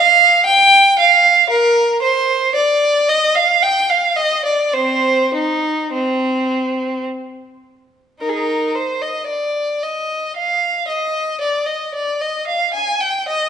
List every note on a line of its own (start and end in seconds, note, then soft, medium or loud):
0.00 0.46 F5 loud
0.46 0.98 G5 loud
0.99 1.50 F5 medium
1.49 2.01 A#4 medium
2.02 2.54 C5 medium
2.55 3.07 D5 medium
3.08 3.35 D#5 medium
3.35 3.62 F5 medium
3.62 3.90 G5 medium
3.89 4.18 F5 medium
4.16 4.45 D#5 medium
4.45 4.74 D5 medium
4.73 5.29 C4 medium
4.73 5.33 C5 medium
5.33 5.91 D#4 medium
5.92 7.05 C4 medium
8.21 8.70 D#4 soft
8.21 8.27 A#4 medium
8.29 8.35 G#4 soft
8.36 8.75 A#4 medium
8.75 9.01 C5 medium
9.02 9.28 D#5 medium
9.27 9.80 D5 medium
9.83 10.35 D#5 medium
10.36 10.87 F5 medium
10.88 11.40 D#5 medium
11.40 11.67 D5 medium
11.66 11.93 D#5 medium
11.94 12.20 D5 medium
12.21 12.47 D#5 medium
12.47 12.72 F5 medium
12.73 12.99 G#5 medium
13.00 13.26 G5 medium
13.28 13.49 D#5 medium